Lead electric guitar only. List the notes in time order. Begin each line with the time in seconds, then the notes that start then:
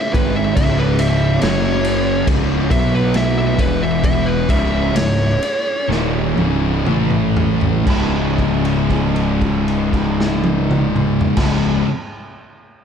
Already playing: E5
0.13 B4
0.36 E5
0.57 E5
0.79 B4
1.00 E5
1.42 C#5
2.71 E5
2.95 B4
3.16 E5
3.38 E5
3.60 B4
3.83 E5
4.05 E5
4.26 B4
4.50 E5
4.96 C#5